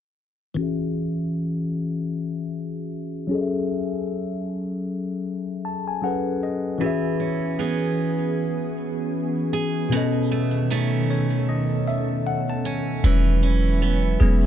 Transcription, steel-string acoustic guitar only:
6.81 9.92 E3 medium
7.20 7.59 C#4 medium
7.59 10.31 B3 medium
7.59 10.71 C#4 medium
7.59 9.52 G#4 medium
9.53 10.01 G#4 medium
9.92 13.04 B2 medium
10.31 10.70 A3 medium
10.70 13.04 D#3 medium
10.70 13.13 A3 medium
10.70 12.65 C#4 medium
12.65 13.42 C#4 medium
13.04 14.46 E3 medium
13.43 14.46 C#4 medium
13.82 14.46 B3 medium

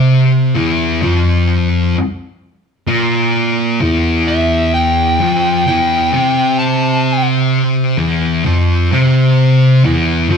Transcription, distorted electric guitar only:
0.00 0.54 C3 medium
0.00 0.55 C4 loud
0.55 1.00 E2 medium
0.55 1.01 E3 loud
1.02 1.94 F2 loud
1.02 1.94 F3 loud
2.87 3.79 A#2 loud
2.87 3.80 A#3 medium
3.80 5.18 E2 medium
3.80 5.19 E3 loud
5.20 5.65 F2 medium
5.20 5.66 F3 loud
5.67 6.12 E2 medium
5.67 6.12 E3 loud
6.13 7.97 C3 loud
6.13 7.98 C4 loud
7.98 8.43 E2 loud
7.98 8.44 E3 loud
8.45 8.90 F2 medium
8.45 8.90 F3 loud
8.91 9.83 C3 loud
8.91 9.83 C4 loud
9.84 10.29 E2 medium
9.84 10.29 E3 loud
10.30 10.37 F2 medium
10.30 10.37 F3 loud

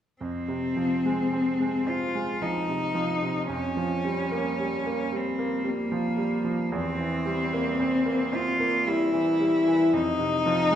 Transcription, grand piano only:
0.21 3.47 F2 soft
0.48 0.94 C3 soft
0.77 1.22 F3 soft
1.05 1.50 G#3 soft
1.33 1.78 C4 soft
1.60 2.05 G#3 soft
1.86 2.31 C4 soft
2.15 2.59 G#3 soft
2.42 2.86 F3 soft
2.69 3.13 C3 soft
2.95 3.39 F3 soft
3.23 3.51 C3 soft
3.49 6.69 F2 soft
3.77 4.22 F3 soft
4.05 4.50 G3 soft
4.31 4.77 A#3 soft
4.60 5.04 G3 soft
4.86 5.30 A#3 soft
5.12 5.56 G3 soft
5.39 5.82 A#3 soft
5.64 6.08 G3 soft
5.92 6.36 F3 soft
6.17 6.62 G3 soft
6.44 6.73 F3 soft
6.72 9.89 E2 soft
6.99 7.43 E3 soft
7.26 7.70 G3 soft
7.53 7.97 A#3 soft
7.80 8.23 C4 soft
8.06 8.49 A#3 soft
8.32 8.76 C4 soft
8.60 9.03 A#3 soft
8.87 9.30 G3 soft
9.12 9.57 E3 soft
9.41 9.84 G3 soft
9.68 9.94 E3 soft
9.93 10.75 F2 soft
10.19 10.61 C3 soft
10.46 10.75 F3 soft
10.71 10.75 G#3 soft

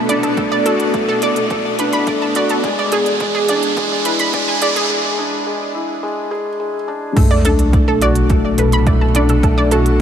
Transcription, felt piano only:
0.00 0.38 A3 medium
0.00 0.09 D4 medium
0.00 0.65 F#4 medium
0.00 1.22 A4 medium
0.09 0.36 D4 medium
0.38 0.65 A3 medium
0.65 0.92 F#4 medium
0.94 1.21 A3 medium
1.22 1.38 A4 medium
1.51 1.67 A3 medium
1.79 2.06 D4 medium
2.07 2.34 A3 medium
2.35 2.62 F#4 medium
2.64 2.91 G#3 medium
2.92 3.08 G#4 medium
3.21 3.37 G#3 medium
3.49 3.76 D4 medium
3.77 4.04 G#3 medium
4.05 4.32 E4 medium
4.34 4.61 G#3 medium
4.62 4.78 G#4 medium
4.90 5.06 G#3 medium
5.18 5.45 D4 medium
5.47 5.74 G#3 medium
5.74 6.02 E4 medium
6.03 6.30 G#3 medium
6.31 6.48 G#4 medium
6.60 6.76 G#3 medium
6.88 7.15 D4 medium
7.16 7.33 A3 medium
7.45 7.72 D4 medium
7.73 8.00 A3 medium
8.01 8.28 F#4 medium
8.30 8.57 A3 medium
8.58 8.74 A4 medium
8.87 9.03 A3 medium
9.15 9.42 D4 medium
9.44 9.70 A3 medium
9.72 9.99 F#4 medium

